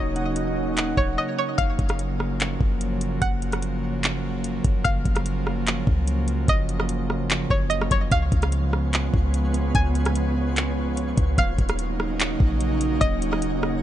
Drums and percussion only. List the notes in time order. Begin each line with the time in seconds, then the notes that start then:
0.16 closed hi-hat
0.36 closed hi-hat
0.77 clap, closed hi-hat
0.97 kick
1.58 kick, closed hi-hat
1.79 kick, closed hi-hat
1.89 cross-stick, closed hi-hat
1.99 closed hi-hat
2.20 cross-stick
2.40 clap, closed hi-hat
2.61 kick
2.81 closed hi-hat
3.01 closed hi-hat
3.22 kick, closed hi-hat
3.42 closed hi-hat
3.52 cross-stick, closed hi-hat
3.62 closed hi-hat
4.04 clap, closed hi-hat
4.44 closed hi-hat
4.64 kick, closed hi-hat
4.85 kick, closed hi-hat
5.05 kick, closed hi-hat
5.16 cross-stick, closed hi-hat
5.26 closed hi-hat
5.47 cross-stick
5.67 clap, closed hi-hat
5.87 kick
6.07 closed hi-hat
6.28 closed hi-hat
6.48 kick, closed hi-hat
6.69 closed hi-hat
6.80 cross-stick
6.89 closed hi-hat
7.10 cross-stick
7.30 clap, closed hi-hat
7.50 kick
7.71 closed hi-hat
7.82 cross-stick
7.91 kick, closed hi-hat
8.12 kick, closed hi-hat
8.32 kick, closed hi-hat
8.42 cross-stick, closed hi-hat
8.52 closed hi-hat
8.73 cross-stick
8.93 clap, closed hi-hat
9.14 kick
9.34 closed hi-hat
9.54 closed hi-hat
9.75 kick, closed hi-hat
9.95 closed hi-hat
10.05 cross-stick, closed hi-hat
10.15 closed hi-hat
10.57 clap, closed hi-hat
10.97 closed hi-hat
11.18 kick, closed hi-hat
11.38 kick, closed hi-hat
11.59 kick, closed hi-hat
11.69 cross-stick, closed hi-hat
11.79 closed hi-hat
12.00 cross-stick
12.20 clap, closed hi-hat
12.40 kick
12.61 closed hi-hat
12.81 closed hi-hat
13.01 kick, closed hi-hat
13.22 closed hi-hat
13.33 cross-stick
13.42 closed hi-hat
13.63 cross-stick